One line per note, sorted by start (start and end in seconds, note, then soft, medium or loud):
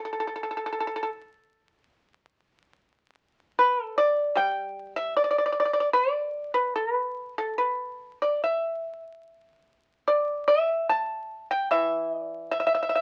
0.05 0.12 A4 medium
0.13 0.19 A4 soft
0.20 0.26 A4 medium
0.27 0.35 A4 soft
0.36 0.42 A4 medium
0.43 0.50 A4 soft
0.51 0.56 A4 medium
0.57 0.64 A4 soft
0.66 0.71 A4 medium
0.72 0.79 A4 soft
0.80 0.86 A4 medium
0.87 0.93 A4 medium
0.96 1.01 A4 medium
1.03 1.08 A4 medium
3.59 3.83 B4 medium
3.83 3.95 A4 medium
3.98 4.35 D5 loud
4.35 6.76 G3 medium
4.35 4.93 G5 loud
4.96 5.15 E5 medium
5.17 5.23 D5 medium
5.24 5.29 D5 medium
5.31 5.37 D5 medium
5.38 5.45 D5 medium
5.46 5.51 D5 medium
5.52 5.59 D5 medium
5.60 5.64 D5 medium
5.65 5.72 D5 medium
5.73 5.79 D5 medium
5.80 5.88 D5 medium
5.93 6.51 D5 medium
6.54 6.74 B4 medium
6.76 6.94 A4 medium
6.94 7.34 B4 medium
7.38 7.58 A4 medium
7.58 8.17 B4 medium
8.22 8.41 D5 medium
8.44 9.02 E5 medium
10.08 10.47 D5 medium
10.48 10.87 E5 loud
10.89 11.47 A5 medium
11.51 11.70 G5 medium
11.71 13.01 E3 medium
11.71 12.21 E5 medium
12.21 12.49 D5 medium
12.51 12.59 E5 medium
12.60 12.66 E5 medium
12.67 12.73 E5 medium
12.75 12.81 E5 medium
12.83 12.88 E5 medium
12.89 12.94 E5 medium
12.95 13.01 E5 medium